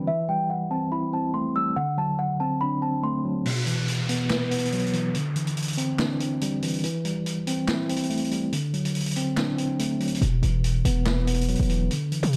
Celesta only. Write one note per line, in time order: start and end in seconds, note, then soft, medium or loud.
0.07 0.26 E5 loud
0.29 0.47 G5 medium
0.50 0.69 F#5 medium
0.71 0.90 A5 medium
0.92 1.11 B5 medium
1.13 1.32 A5 medium
1.34 1.53 C6 medium
1.56 1.74 E6 medium
1.76 1.95 F#5 loud
1.98 2.17 A5 medium
2.19 2.37 F#5 medium
2.40 2.59 A5 medium
2.61 2.80 B5 medium
2.82 3.01 A5 medium
3.04 3.22 C6 medium